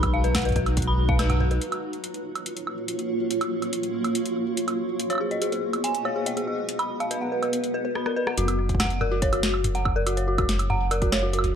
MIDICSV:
0, 0, Header, 1, 5, 480
1, 0, Start_track
1, 0, Key_signature, 6, "major"
1, 0, Tempo, 422535
1, 1835, Time_signature, 4, 2, 24, 8
1, 13123, End_track
2, 0, Start_track
2, 0, Title_t, "Synth bell"
2, 0, Program_c, 0, 98
2, 154, Note_on_c, 0, 77, 101
2, 196, Note_off_c, 0, 77, 0
2, 274, Note_on_c, 0, 71, 75
2, 316, Note_off_c, 0, 71, 0
2, 394, Note_on_c, 0, 78, 85
2, 498, Note_off_c, 0, 78, 0
2, 513, Note_on_c, 0, 71, 79
2, 583, Note_off_c, 0, 71, 0
2, 634, Note_on_c, 0, 71, 77
2, 738, Note_off_c, 0, 71, 0
2, 994, Note_on_c, 0, 83, 103
2, 1063, Note_off_c, 0, 83, 0
2, 1235, Note_on_c, 0, 77, 104
2, 1276, Note_off_c, 0, 77, 0
2, 1354, Note_on_c, 0, 71, 83
2, 1396, Note_off_c, 0, 71, 0
2, 1474, Note_on_c, 0, 78, 76
2, 1578, Note_off_c, 0, 78, 0
2, 1595, Note_on_c, 0, 71, 79
2, 1664, Note_off_c, 0, 71, 0
2, 1714, Note_on_c, 0, 71, 81
2, 1818, Note_off_c, 0, 71, 0
2, 5794, Note_on_c, 0, 73, 86
2, 5836, Note_off_c, 0, 73, 0
2, 5915, Note_on_c, 0, 68, 71
2, 5956, Note_off_c, 0, 68, 0
2, 6034, Note_on_c, 0, 75, 71
2, 6138, Note_off_c, 0, 75, 0
2, 6155, Note_on_c, 0, 68, 80
2, 6223, Note_off_c, 0, 68, 0
2, 6275, Note_on_c, 0, 68, 72
2, 6378, Note_off_c, 0, 68, 0
2, 6634, Note_on_c, 0, 80, 95
2, 6703, Note_off_c, 0, 80, 0
2, 6874, Note_on_c, 0, 73, 93
2, 6916, Note_off_c, 0, 73, 0
2, 6995, Note_on_c, 0, 68, 71
2, 7036, Note_off_c, 0, 68, 0
2, 7114, Note_on_c, 0, 75, 78
2, 7218, Note_off_c, 0, 75, 0
2, 7235, Note_on_c, 0, 68, 70
2, 7304, Note_off_c, 0, 68, 0
2, 7354, Note_on_c, 0, 68, 70
2, 7458, Note_off_c, 0, 68, 0
2, 7714, Note_on_c, 0, 83, 89
2, 7783, Note_off_c, 0, 83, 0
2, 7954, Note_on_c, 0, 77, 94
2, 7996, Note_off_c, 0, 77, 0
2, 8075, Note_on_c, 0, 71, 79
2, 8116, Note_off_c, 0, 71, 0
2, 8195, Note_on_c, 0, 78, 71
2, 8298, Note_off_c, 0, 78, 0
2, 8315, Note_on_c, 0, 71, 70
2, 8384, Note_off_c, 0, 71, 0
2, 8435, Note_on_c, 0, 71, 73
2, 8538, Note_off_c, 0, 71, 0
2, 8795, Note_on_c, 0, 71, 96
2, 8863, Note_off_c, 0, 71, 0
2, 8914, Note_on_c, 0, 71, 72
2, 8956, Note_off_c, 0, 71, 0
2, 9034, Note_on_c, 0, 83, 78
2, 9103, Note_off_c, 0, 83, 0
2, 9155, Note_on_c, 0, 70, 70
2, 9223, Note_off_c, 0, 70, 0
2, 9274, Note_on_c, 0, 71, 98
2, 9378, Note_off_c, 0, 71, 0
2, 9395, Note_on_c, 0, 78, 70
2, 9464, Note_off_c, 0, 78, 0
2, 9515, Note_on_c, 0, 66, 80
2, 9584, Note_off_c, 0, 66, 0
2, 9634, Note_on_c, 0, 66, 72
2, 9738, Note_off_c, 0, 66, 0
2, 9994, Note_on_c, 0, 78, 100
2, 10063, Note_off_c, 0, 78, 0
2, 10234, Note_on_c, 0, 70, 99
2, 10275, Note_off_c, 0, 70, 0
2, 10354, Note_on_c, 0, 66, 77
2, 10396, Note_off_c, 0, 66, 0
2, 10474, Note_on_c, 0, 73, 82
2, 10578, Note_off_c, 0, 73, 0
2, 10594, Note_on_c, 0, 66, 76
2, 10663, Note_off_c, 0, 66, 0
2, 10714, Note_on_c, 0, 66, 76
2, 10818, Note_off_c, 0, 66, 0
2, 11075, Note_on_c, 0, 78, 95
2, 11143, Note_off_c, 0, 78, 0
2, 11314, Note_on_c, 0, 70, 99
2, 11355, Note_off_c, 0, 70, 0
2, 11434, Note_on_c, 0, 66, 82
2, 11476, Note_off_c, 0, 66, 0
2, 11555, Note_on_c, 0, 73, 74
2, 11658, Note_off_c, 0, 73, 0
2, 11674, Note_on_c, 0, 66, 76
2, 11743, Note_off_c, 0, 66, 0
2, 11793, Note_on_c, 0, 66, 76
2, 11897, Note_off_c, 0, 66, 0
2, 12154, Note_on_c, 0, 78, 106
2, 12223, Note_off_c, 0, 78, 0
2, 12395, Note_on_c, 0, 70, 96
2, 12436, Note_off_c, 0, 70, 0
2, 12514, Note_on_c, 0, 66, 77
2, 12556, Note_off_c, 0, 66, 0
2, 12635, Note_on_c, 0, 73, 77
2, 12738, Note_off_c, 0, 73, 0
2, 12754, Note_on_c, 0, 66, 78
2, 12823, Note_off_c, 0, 66, 0
2, 12874, Note_on_c, 0, 66, 84
2, 12978, Note_off_c, 0, 66, 0
2, 13123, End_track
3, 0, Start_track
3, 0, Title_t, "Ambient pad"
3, 0, Program_c, 1, 92
3, 0, Note_on_c, 1, 63, 73
3, 0, Note_on_c, 1, 66, 73
3, 0, Note_on_c, 1, 71, 88
3, 1789, Note_off_c, 1, 66, 0
3, 1796, Note_off_c, 1, 63, 0
3, 1796, Note_off_c, 1, 71, 0
3, 1834, Note_on_c, 1, 73, 84
3, 1835, Note_on_c, 1, 58, 76
3, 1835, Note_on_c, 1, 65, 69
3, 1835, Note_on_c, 1, 66, 70
3, 5636, Note_off_c, 1, 65, 0
3, 5636, Note_off_c, 1, 73, 0
3, 5637, Note_off_c, 1, 58, 0
3, 5672, Note_on_c, 1, 59, 78
3, 5673, Note_on_c, 1, 68, 71
3, 5673, Note_on_c, 1, 75, 86
3, 7574, Note_off_c, 1, 59, 0
3, 7575, Note_off_c, 1, 68, 0
3, 7594, Note_on_c, 1, 59, 75
3, 8989, Note_off_c, 1, 66, 0
3, 9000, Note_off_c, 1, 75, 0
3, 9020, Note_off_c, 1, 59, 0
3, 13123, End_track
4, 0, Start_track
4, 0, Title_t, "Analog synth bass"
4, 0, Program_c, 2, 38
4, 0, Note_on_c, 2, 35, 93
4, 1811, Note_off_c, 2, 35, 0
4, 9516, Note_on_c, 2, 30, 89
4, 13123, Note_off_c, 2, 30, 0
4, 13123, End_track
5, 0, Start_track
5, 0, Title_t, "Drums"
5, 34, Note_on_c, 9, 42, 53
5, 34, Note_on_c, 9, 76, 83
5, 35, Note_on_c, 9, 36, 100
5, 147, Note_off_c, 9, 42, 0
5, 147, Note_off_c, 9, 76, 0
5, 149, Note_off_c, 9, 36, 0
5, 274, Note_on_c, 9, 42, 38
5, 387, Note_off_c, 9, 42, 0
5, 394, Note_on_c, 9, 38, 115
5, 394, Note_on_c, 9, 42, 79
5, 394, Note_on_c, 9, 76, 63
5, 395, Note_on_c, 9, 36, 116
5, 434, Note_off_c, 9, 42, 0
5, 434, Note_on_c, 9, 42, 66
5, 474, Note_off_c, 9, 42, 0
5, 474, Note_on_c, 9, 42, 53
5, 507, Note_off_c, 9, 38, 0
5, 507, Note_off_c, 9, 76, 0
5, 508, Note_off_c, 9, 36, 0
5, 514, Note_off_c, 9, 42, 0
5, 514, Note_on_c, 9, 42, 42
5, 554, Note_off_c, 9, 42, 0
5, 554, Note_on_c, 9, 42, 35
5, 573, Note_on_c, 9, 45, 95
5, 593, Note_off_c, 9, 42, 0
5, 593, Note_on_c, 9, 42, 29
5, 634, Note_off_c, 9, 42, 0
5, 634, Note_on_c, 9, 42, 53
5, 635, Note_on_c, 9, 36, 105
5, 687, Note_off_c, 9, 45, 0
5, 747, Note_off_c, 9, 42, 0
5, 749, Note_off_c, 9, 36, 0
5, 754, Note_on_c, 9, 42, 38
5, 754, Note_on_c, 9, 76, 56
5, 868, Note_off_c, 9, 42, 0
5, 868, Note_off_c, 9, 76, 0
5, 874, Note_on_c, 9, 42, 81
5, 875, Note_on_c, 9, 36, 106
5, 934, Note_off_c, 9, 42, 0
5, 934, Note_on_c, 9, 42, 56
5, 989, Note_off_c, 9, 36, 0
5, 1047, Note_off_c, 9, 42, 0
5, 1235, Note_on_c, 9, 36, 115
5, 1349, Note_off_c, 9, 36, 0
5, 1353, Note_on_c, 9, 38, 115
5, 1353, Note_on_c, 9, 42, 81
5, 1353, Note_on_c, 9, 76, 66
5, 1467, Note_off_c, 9, 38, 0
5, 1467, Note_off_c, 9, 42, 0
5, 1467, Note_off_c, 9, 76, 0
5, 1473, Note_on_c, 9, 42, 52
5, 1473, Note_on_c, 9, 45, 93
5, 1473, Note_on_c, 9, 76, 61
5, 1587, Note_off_c, 9, 42, 0
5, 1587, Note_off_c, 9, 45, 0
5, 1587, Note_off_c, 9, 76, 0
5, 1594, Note_on_c, 9, 45, 92
5, 1707, Note_off_c, 9, 45, 0
5, 1714, Note_on_c, 9, 42, 37
5, 1828, Note_off_c, 9, 42, 0
5, 1835, Note_on_c, 9, 42, 77
5, 1948, Note_off_c, 9, 42, 0
5, 1955, Note_on_c, 9, 42, 49
5, 1955, Note_on_c, 9, 76, 74
5, 2069, Note_off_c, 9, 42, 0
5, 2069, Note_off_c, 9, 76, 0
5, 2195, Note_on_c, 9, 42, 35
5, 2308, Note_off_c, 9, 42, 0
5, 2314, Note_on_c, 9, 42, 78
5, 2428, Note_off_c, 9, 42, 0
5, 2435, Note_on_c, 9, 42, 51
5, 2548, Note_off_c, 9, 42, 0
5, 2675, Note_on_c, 9, 42, 35
5, 2675, Note_on_c, 9, 76, 53
5, 2789, Note_off_c, 9, 42, 0
5, 2789, Note_off_c, 9, 76, 0
5, 2795, Note_on_c, 9, 42, 79
5, 2908, Note_off_c, 9, 42, 0
5, 2915, Note_on_c, 9, 42, 51
5, 3029, Note_off_c, 9, 42, 0
5, 3035, Note_on_c, 9, 76, 51
5, 3148, Note_off_c, 9, 76, 0
5, 3274, Note_on_c, 9, 42, 75
5, 3388, Note_off_c, 9, 42, 0
5, 3395, Note_on_c, 9, 42, 50
5, 3509, Note_off_c, 9, 42, 0
5, 3755, Note_on_c, 9, 42, 75
5, 3869, Note_off_c, 9, 42, 0
5, 3875, Note_on_c, 9, 42, 51
5, 3875, Note_on_c, 9, 76, 71
5, 3989, Note_off_c, 9, 42, 0
5, 3989, Note_off_c, 9, 76, 0
5, 4115, Note_on_c, 9, 42, 35
5, 4115, Note_on_c, 9, 76, 34
5, 4229, Note_off_c, 9, 42, 0
5, 4229, Note_off_c, 9, 76, 0
5, 4235, Note_on_c, 9, 42, 78
5, 4349, Note_off_c, 9, 42, 0
5, 4355, Note_on_c, 9, 42, 50
5, 4468, Note_off_c, 9, 42, 0
5, 4594, Note_on_c, 9, 42, 36
5, 4594, Note_on_c, 9, 76, 50
5, 4708, Note_off_c, 9, 42, 0
5, 4708, Note_off_c, 9, 76, 0
5, 4715, Note_on_c, 9, 42, 77
5, 4828, Note_off_c, 9, 42, 0
5, 4834, Note_on_c, 9, 42, 51
5, 4948, Note_off_c, 9, 42, 0
5, 5194, Note_on_c, 9, 42, 78
5, 5308, Note_off_c, 9, 42, 0
5, 5314, Note_on_c, 9, 42, 50
5, 5314, Note_on_c, 9, 76, 56
5, 5428, Note_off_c, 9, 42, 0
5, 5428, Note_off_c, 9, 76, 0
5, 5674, Note_on_c, 9, 42, 74
5, 5788, Note_off_c, 9, 42, 0
5, 5793, Note_on_c, 9, 42, 51
5, 5793, Note_on_c, 9, 76, 32
5, 5824, Note_off_c, 9, 76, 0
5, 5824, Note_on_c, 9, 76, 41
5, 5853, Note_off_c, 9, 76, 0
5, 5853, Note_on_c, 9, 76, 47
5, 5883, Note_off_c, 9, 76, 0
5, 5883, Note_on_c, 9, 76, 58
5, 5907, Note_off_c, 9, 42, 0
5, 5997, Note_off_c, 9, 76, 0
5, 6033, Note_on_c, 9, 42, 34
5, 6147, Note_off_c, 9, 42, 0
5, 6153, Note_on_c, 9, 42, 78
5, 6266, Note_off_c, 9, 42, 0
5, 6274, Note_on_c, 9, 42, 49
5, 6388, Note_off_c, 9, 42, 0
5, 6514, Note_on_c, 9, 42, 34
5, 6514, Note_on_c, 9, 76, 50
5, 6627, Note_off_c, 9, 42, 0
5, 6627, Note_off_c, 9, 76, 0
5, 6634, Note_on_c, 9, 42, 77
5, 6747, Note_off_c, 9, 42, 0
5, 6754, Note_on_c, 9, 42, 50
5, 6868, Note_off_c, 9, 42, 0
5, 6875, Note_on_c, 9, 76, 48
5, 6988, Note_off_c, 9, 76, 0
5, 7115, Note_on_c, 9, 42, 76
5, 7229, Note_off_c, 9, 42, 0
5, 7235, Note_on_c, 9, 42, 50
5, 7349, Note_off_c, 9, 42, 0
5, 7596, Note_on_c, 9, 42, 73
5, 7709, Note_off_c, 9, 42, 0
5, 7715, Note_on_c, 9, 42, 48
5, 7715, Note_on_c, 9, 76, 69
5, 7829, Note_off_c, 9, 42, 0
5, 7829, Note_off_c, 9, 76, 0
5, 7956, Note_on_c, 9, 42, 34
5, 7956, Note_on_c, 9, 76, 33
5, 8069, Note_off_c, 9, 42, 0
5, 8069, Note_off_c, 9, 76, 0
5, 8075, Note_on_c, 9, 42, 73
5, 8189, Note_off_c, 9, 42, 0
5, 8435, Note_on_c, 9, 42, 35
5, 8435, Note_on_c, 9, 76, 47
5, 8549, Note_off_c, 9, 42, 0
5, 8549, Note_off_c, 9, 76, 0
5, 8554, Note_on_c, 9, 42, 74
5, 8668, Note_off_c, 9, 42, 0
5, 8675, Note_on_c, 9, 42, 51
5, 8788, Note_off_c, 9, 42, 0
5, 9036, Note_on_c, 9, 37, 59
5, 9149, Note_off_c, 9, 37, 0
5, 9155, Note_on_c, 9, 37, 55
5, 9269, Note_off_c, 9, 37, 0
5, 9394, Note_on_c, 9, 37, 78
5, 9508, Note_off_c, 9, 37, 0
5, 9514, Note_on_c, 9, 42, 85
5, 9628, Note_off_c, 9, 42, 0
5, 9635, Note_on_c, 9, 42, 55
5, 9635, Note_on_c, 9, 76, 55
5, 9748, Note_off_c, 9, 42, 0
5, 9748, Note_off_c, 9, 76, 0
5, 9875, Note_on_c, 9, 36, 47
5, 9875, Note_on_c, 9, 42, 38
5, 9935, Note_off_c, 9, 36, 0
5, 9935, Note_on_c, 9, 36, 62
5, 9988, Note_off_c, 9, 42, 0
5, 9995, Note_on_c, 9, 38, 123
5, 9995, Note_on_c, 9, 42, 85
5, 9995, Note_on_c, 9, 76, 85
5, 9996, Note_off_c, 9, 36, 0
5, 9996, Note_on_c, 9, 36, 73
5, 10055, Note_off_c, 9, 36, 0
5, 10055, Note_on_c, 9, 36, 88
5, 10108, Note_off_c, 9, 38, 0
5, 10108, Note_off_c, 9, 42, 0
5, 10108, Note_off_c, 9, 76, 0
5, 10115, Note_on_c, 9, 42, 54
5, 10169, Note_off_c, 9, 36, 0
5, 10229, Note_off_c, 9, 42, 0
5, 10236, Note_on_c, 9, 45, 93
5, 10236, Note_on_c, 9, 76, 54
5, 10349, Note_off_c, 9, 45, 0
5, 10349, Note_off_c, 9, 76, 0
5, 10474, Note_on_c, 9, 42, 81
5, 10475, Note_on_c, 9, 36, 122
5, 10588, Note_off_c, 9, 42, 0
5, 10589, Note_off_c, 9, 36, 0
5, 10595, Note_on_c, 9, 42, 55
5, 10595, Note_on_c, 9, 76, 85
5, 10709, Note_off_c, 9, 42, 0
5, 10709, Note_off_c, 9, 76, 0
5, 10714, Note_on_c, 9, 38, 120
5, 10828, Note_off_c, 9, 38, 0
5, 10834, Note_on_c, 9, 76, 58
5, 10948, Note_off_c, 9, 76, 0
5, 10954, Note_on_c, 9, 42, 88
5, 10954, Note_on_c, 9, 45, 92
5, 11068, Note_off_c, 9, 42, 0
5, 11068, Note_off_c, 9, 45, 0
5, 11075, Note_on_c, 9, 42, 52
5, 11188, Note_off_c, 9, 42, 0
5, 11194, Note_on_c, 9, 76, 83
5, 11196, Note_on_c, 9, 36, 105
5, 11308, Note_off_c, 9, 76, 0
5, 11309, Note_off_c, 9, 36, 0
5, 11434, Note_on_c, 9, 42, 86
5, 11434, Note_on_c, 9, 76, 52
5, 11548, Note_off_c, 9, 42, 0
5, 11548, Note_off_c, 9, 76, 0
5, 11555, Note_on_c, 9, 42, 55
5, 11669, Note_off_c, 9, 42, 0
5, 11795, Note_on_c, 9, 36, 125
5, 11796, Note_on_c, 9, 42, 39
5, 11796, Note_on_c, 9, 76, 82
5, 11909, Note_off_c, 9, 36, 0
5, 11909, Note_off_c, 9, 42, 0
5, 11909, Note_off_c, 9, 76, 0
5, 11915, Note_on_c, 9, 38, 127
5, 11915, Note_on_c, 9, 42, 84
5, 12029, Note_off_c, 9, 38, 0
5, 12029, Note_off_c, 9, 42, 0
5, 12034, Note_on_c, 9, 42, 55
5, 12034, Note_on_c, 9, 76, 53
5, 12148, Note_off_c, 9, 42, 0
5, 12148, Note_off_c, 9, 76, 0
5, 12154, Note_on_c, 9, 45, 86
5, 12268, Note_off_c, 9, 45, 0
5, 12395, Note_on_c, 9, 42, 87
5, 12395, Note_on_c, 9, 76, 80
5, 12508, Note_off_c, 9, 42, 0
5, 12508, Note_off_c, 9, 76, 0
5, 12515, Note_on_c, 9, 42, 55
5, 12516, Note_on_c, 9, 36, 112
5, 12629, Note_off_c, 9, 36, 0
5, 12629, Note_off_c, 9, 42, 0
5, 12636, Note_on_c, 9, 38, 126
5, 12636, Note_on_c, 9, 76, 53
5, 12750, Note_off_c, 9, 38, 0
5, 12750, Note_off_c, 9, 76, 0
5, 12876, Note_on_c, 9, 42, 84
5, 12935, Note_on_c, 9, 76, 82
5, 12989, Note_off_c, 9, 42, 0
5, 12995, Note_on_c, 9, 42, 56
5, 12995, Note_on_c, 9, 45, 90
5, 13048, Note_off_c, 9, 76, 0
5, 13108, Note_off_c, 9, 42, 0
5, 13108, Note_off_c, 9, 45, 0
5, 13123, End_track
0, 0, End_of_file